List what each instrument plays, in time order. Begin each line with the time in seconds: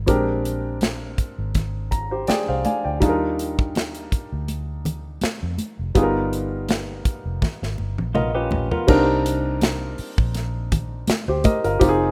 0.06 fingered electric bass A#1, grand piano G#3 C4 D4 G4 A#4, kick, closed hi-hat, muted conga
0.45 closed hi-hat
0.81 snare, closed hi-hat, high conga
1.18 muted fingered electric bass stroke, kick, closed hi-hat
1.38 fingered electric bass G#1
1.55 kick, snare, closed hi-hat, muted conga, low conga
1.91 grand piano A#5, kick, closed hi-hat, muted conga
2.11 grand piano G4 C5
2.27 grand piano G#4 D5 G5, muted fingered electric bass stroke, snare, closed hi-hat, high conga
2.48 fingered electric bass C2, grand piano C5 F5
2.65 grand piano D5 F5 G#5, closed hi-hat, high conga
2.85 fingered electric bass D2, grand piano D5 G5
3.00 fingered electric bass D#2, grand piano G3 D4 D#4 F4 G#4, kick, closed hi-hat, muted conga
3.09 grand piano A#4
3.39 closed hi-hat
3.59 kick
3.75 snare, closed hi-hat, high conga
3.95 closed hi-hat
4.12 muted fingered electric bass stroke, kick, closed hi-hat
4.33 fingered electric bass D2
4.48 closed hi-hat, muted conga
4.85 closed hi-hat, muted conga, low conga
5.21 muted fingered electric bass stroke, snare, closed hi-hat, high conga
5.43 fingered electric bass F2
5.58 closed hi-hat, high conga
5.79 fingered electric bass F1
5.95 fingered electric bass G1, grand piano G3 B3 D#4 F4 G#4, kick, closed hi-hat, muted conga
6.03 grand piano A#4
6.33 closed hi-hat
6.69 snare, closed hi-hat, high conga
7.05 muted fingered electric bass stroke, kick, closed hi-hat
7.25 fingered electric bass F1
7.42 kick, snare, muted conga, low conga
7.62 fingered electric bass G#1, snare
7.78 fingered electric bass G1, muted conga
7.98 fingered electric bass A#1, high tom
8.15 fingered electric bass A#1, clean electric guitar B3 F4, grand piano A#4 D#5, mid tom, high conga
8.35 clean electric guitar C#4 G4, grand piano F4 B4
8.51 fingered electric bass A#1, floor tom, high conga
8.71 clean electric guitar B3 F4, grand piano F4 A#4, floor tom
8.87 fingered electric bass C2, grand piano G3 C4 D4 D#4 A#4, kick, crash, muted conga
9.26 closed hi-hat
9.61 snare, closed hi-hat, high conga
9.98 muted fingered electric bass stroke, open hi-hat
10.18 fingered electric bass A#1, kick
10.35 snare, closed hi-hat, muted conga
10.72 kick, closed hi-hat, muted conga, low conga
11.07 muted fingered electric bass stroke, snare, closed hi-hat, high conga
11.28 fingered electric bass D2, grand piano G4 C5
11.44 grand piano A#4 D#5, kick, closed hi-hat, high conga
11.64 fingered electric bass G1, grand piano F4 A#4, closed hi-hat
11.79 fingered electric bass F1, grand piano C4 D#4 F4 G4, kick, closed hi-hat, muted conga
11.89 grand piano G#4